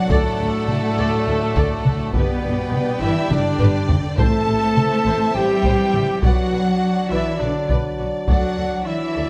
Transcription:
0.00 2.14 F#3 medium
0.00 2.13 D4 medium
0.00 0.10 F#4 medium
0.00 2.10 D5 medium
0.00 2.14 F#5 medium
0.09 0.18 D2 medium
0.09 2.14 A2 medium
0.09 2.14 A3 loud
0.09 2.10 A3 medium
0.09 1.85 A4 medium
0.09 0.37 A4 medium
0.09 2.10 A4 medium
0.09 0.37 D5 medium
0.09 taiko medium
0.39 0.47 D2 medium
0.39 0.47 F#4 soft
0.39 0.47 A4 soft
0.68 taiko mid medium
0.97 1.05 D2 medium
0.97 1.25 A4 medium
0.97 1.25 D5 medium
1.26 1.35 D2 medium
1.26 1.35 F#4 medium
1.26 1.34 A4 medium
1.55 1.64 D2 medium
1.55 1.83 A4 medium
1.55 1.82 D5 medium
1.55 taiko medium
1.85 1.93 D2 medium
1.85 1.94 F#4 medium
1.85 1.94 A4 medium
1.85 taiko mid medium
2.13 2.22 G1 medium
2.13 3.00 B2 medium
2.13 4.01 G3 medium
2.13 2.99 B3 medium
2.13 3.03 B3 medium
2.13 4.01 D4 medium
2.13 2.42 G4 medium
2.13 2.99 B4 medium
2.13 3.00 B4 medium
2.13 2.42 B4 medium
2.13 4.14 D5 medium
2.13 4.18 G5 medium
2.13 taiko medium
2.43 2.51 G1 medium
2.43 2.52 D4 soft
2.43 2.52 G4 medium
2.73 taiko mid medium
3.00 3.09 G1 medium
3.00 3.30 E3 medium
3.00 3.30 E4 medium
3.00 3.31 E4 medium
3.00 3.29 G4 medium
3.00 3.29 B4 medium
3.00 3.32 E5 medium
3.00 3.31 E5 medium
3.30 3.39 G1 medium
3.30 4.18 D3 medium
3.30 4.01 D4 medium
3.30 3.89 D4 medium
3.30 3.39 D4 medium
3.30 3.39 G4 medium
3.30 3.90 D5 medium
3.30 4.19 D5 medium
3.30 taiko mid medium
3.60 3.68 G1 medium
3.60 3.87 G4 medium
3.60 3.87 B4 medium
3.60 taiko low-mid medium
3.89 3.97 G1 medium
3.89 3.97 D4 medium
3.89 3.97 G4 medium
3.89 taiko low medium
4.18 4.27 A1 medium
4.18 5.02 A2 medium
4.18 6.18 E3 medium
4.18 5.32 A3 medium
4.18 6.18 C4 medium
4.18 5.33 A4 loud
4.18 5.31 A4 medium
4.18 4.45 C5 medium
4.18 6.23 C5 medium
4.18 6.23 E5 medium
4.18 5.37 A5 loud
4.18 5.33 A5 medium
4.18 taiko medium
4.48 4.57 A1 medium
4.48 4.56 E4 soft
4.48 4.56 C5 medium
4.77 taiko mid medium
5.06 5.15 A1 medium
5.06 5.33 C5 medium
5.35 5.44 A1 medium
5.35 6.21 G3 medium
5.35 5.44 E4 medium
5.35 6.22 G4 loud
5.35 6.21 G4 medium
5.35 5.44 C5 medium
5.35 6.22 G5 medium
5.35 6.23 G5 medium
5.64 5.72 A1 medium
5.64 5.92 C5 medium
5.64 taiko medium
5.94 6.02 A1 medium
5.94 6.02 E4 medium
5.94 6.02 C5 medium
5.94 taiko mid medium
6.22 6.32 B1 medium
6.22 7.08 F#3 medium
6.22 9.30 F#3 medium
6.22 9.30 D4 medium
6.22 7.08 F#4 loud
6.22 7.12 F#4 medium
6.22 6.50 B4 medium
6.22 9.30 D5 medium
6.22 6.50 D5 medium
6.22 7.12 F#5 medium
6.22 7.09 F#5 medium
6.22 taiko medium
6.53 6.61 B1 medium
6.53 6.61 F#4 medium
6.53 6.61 B4 medium
7.10 7.20 B1 medium
7.10 7.40 E3 medium
7.10 7.39 E4 medium
7.10 7.41 E4 medium
7.10 7.38 B4 medium
7.10 7.38 D5 medium
7.10 7.42 E5 medium
7.10 7.41 E5 medium
7.39 7.49 B1 medium
7.39 7.69 D3 medium
7.39 7.68 D4 medium
7.39 7.69 D4 medium
7.39 7.48 F#4 medium
7.39 7.49 B4 medium
7.39 7.69 D5 medium
7.69 7.78 B1 medium
7.69 7.96 B4 medium
7.69 7.96 D5 medium
7.69 taiko medium
7.98 8.07 B1 soft
7.98 8.06 F#4 soft
7.98 8.06 B4 medium
8.27 8.36 D2 medium
8.27 8.82 F#3 medium
8.27 8.81 F#4 medium
8.27 8.87 F#4 medium
8.27 8.55 A4 medium
8.27 8.55 D5 medium
8.27 8.88 F#5 medium
8.27 8.83 F#5 medium
8.27 taiko medium
8.57 8.66 D2 soft
8.57 8.65 F#4 soft
8.57 8.65 A4 soft
8.86 9.30 E3 medium
8.86 9.30 E4 medium
8.86 9.30 E5 medium
9.14 9.25 D2 medium
9.14 9.30 A4 medium
9.14 9.30 D5 medium

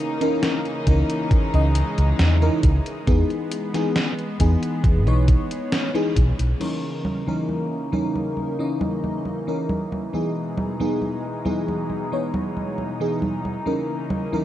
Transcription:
0.00 3.04 C#3 medium
0.00 0.15 E3 medium
0.00 3.04 E3 medium
0.00 1.29 A#3 medium
0.00 0.16 C#4 medium
0.00 0.16 D#4 medium
0.00 3.03 D#4 medium
0.00 0.16 A#4 medium
0.20 0.61 E3 medium
0.20 0.61 C#4 medium
0.20 0.61 D#4 medium
0.20 0.62 A#4 loud
0.20 closed hi-hat medium
0.43 snare loud
0.43 closed hi-hat soft
0.65 closed hi-hat soft
0.86 1.01 C#2 medium
0.86 1.48 E3 medium
0.86 1.48 C#4 medium
0.86 1.48 D#4 medium
0.86 1.49 A#4 medium
0.86 kick medium
0.86 closed hi-hat medium
1.10 closed hi-hat medium
1.31 3.06 G#3 medium
1.31 muted fretless electric bass stroke soft
1.31 kick loud
1.31 closed hi-hat medium
1.53 1.81 C#2 loud
1.53 2.36 E3 medium
1.53 2.36 C#4 medium
1.53 2.37 D#4 medium
1.53 2.37 D#5 medium
1.53 closed hi-hat soft
1.75 closed hi-hat medium
1.98 2.11 C#2 loud
1.98 closed hi-hat soft
2.19 2.48 E2 loud
2.19 snare loud
2.19 closed hi-hat soft
2.41 2.66 E3 medium
2.41 2.66 C#4 medium
2.41 2.66 D#4 medium
2.41 2.67 A#4 medium
2.41 closed hi-hat soft
2.63 2.78 C#2 medium
2.63 kick loud
2.63 closed hi-hat medium
2.86 closed hi-hat soft
3.07 3.22 E2 loud
3.07 3.68 E3 medium
3.07 6.57 G#3 medium
3.07 3.69 B3 medium
3.07 6.57 B3 medium
3.07 3.69 D#4 medium
3.07 3.69 G#4 medium
3.07 kick loud
3.07 closed hi-hat medium
3.30 closed hi-hat soft
3.52 closed hi-hat medium
3.74 4.14 E3 medium
3.74 4.14 B3 medium
3.74 4.15 D#4 medium
3.74 4.15 G#4 loud
3.74 snare soft
3.74 closed hi-hat medium
3.96 snare loud
3.96 closed hi-hat medium
4.19 closed hi-hat soft
4.39 4.54 E2 medium
4.39 5.01 E3 medium
4.39 5.01 B3 medium
4.39 5.01 D#4 medium
4.39 5.02 G#4 medium
4.39 kick medium
4.39 closed hi-hat medium
4.63 closed hi-hat medium
4.84 5.07 E1 medium
4.84 kick loud
4.84 closed hi-hat medium
5.06 5.34 B1 medium
5.06 5.89 E3 medium
5.06 5.89 B3 medium
5.06 5.90 D#4 medium
5.06 5.90 C#5 medium
5.06 closed hi-hat soft
5.28 kick loud
5.28 closed hi-hat medium
5.51 closed hi-hat medium
5.72 snare loud
5.72 closed hi-hat medium
5.94 6.19 E3 medium
5.94 6.19 B3 medium
5.94 6.19 D#4 medium
5.94 6.20 G#4 loud
5.94 closed hi-hat soft
6.16 6.31 B1 medium
6.16 kick medium
6.16 closed hi-hat medium
6.39 6.53 B1 medium
6.39 closed hi-hat medium
6.60 10.10 C#3 medium
6.60 7.21 E3 medium
6.60 14.45 E3 medium
6.60 10.10 A#3 medium
6.60 7.22 C#4 medium
6.60 10.10 D#4 medium
6.60 7.22 D#4 medium
6.60 7.22 A#4 medium
6.60 crash medium
6.60 high conga soft
7.05 high conga medium
7.27 7.67 E3 medium
7.27 7.67 C#4 medium
7.27 7.68 D#4 medium
7.27 7.68 A#4 medium
7.27 high conga soft
7.49 high conga soft
7.92 8.54 E3 medium
7.92 8.54 C#4 medium
7.92 8.54 D#4 medium
7.92 8.54 A#4 medium
7.92 high conga medium
8.16 high conga soft
8.37 high conga soft
8.59 9.42 E3 medium
8.59 9.42 C#4 medium
8.59 9.43 D#4 medium
8.59 9.43 D#5 medium
8.81 high conga medium
9.04 high conga soft
9.25 high conga soft
9.47 9.72 E3 medium
9.47 9.72 C#4 medium
9.47 9.72 D#4 medium
9.47 9.73 A#4 medium
9.69 high conga medium
9.92 high conga soft
10.13 13.63 B2 medium
10.13 10.75 E3 medium
10.13 13.63 G#3 medium
10.13 10.75 B3 medium
10.13 14.45 D#4 medium
10.13 10.75 D#4 medium
10.13 10.75 G#4 medium
10.13 high conga soft
10.57 high conga medium
10.79 11.20 E3 medium
10.79 11.20 B3 medium
10.79 11.20 D#4 medium
10.79 11.21 G#4 medium
10.79 high conga soft
11.02 high conga soft
11.45 12.07 E3 medium
11.45 12.07 B3 medium
11.45 12.07 D#4 medium
11.45 12.07 G#4 medium
11.45 high conga medium
11.68 high conga soft
11.90 high conga soft
12.12 12.95 E3 medium
12.12 12.95 B3 medium
12.12 12.95 D#4 medium
12.12 12.96 C#5 medium
12.34 high conga medium
12.57 high conga soft
12.78 high conga soft
13.00 13.25 E3 medium
13.00 13.25 B3 medium
13.00 13.25 D#4 medium
13.00 13.26 G#4 medium
13.22 high conga medium
13.45 high conga soft
13.65 14.45 C#3 medium
13.65 14.27 E3 medium
13.65 14.45 A#3 medium
13.65 14.27 C#4 medium
13.65 14.28 D#4 medium
13.65 14.28 A#4 medium
13.65 high conga soft
14.10 high conga medium
14.32 14.45 E3 medium
14.32 14.45 C#4 medium
14.32 14.45 D#4 medium
14.32 14.45 A#4 medium
14.32 high conga soft

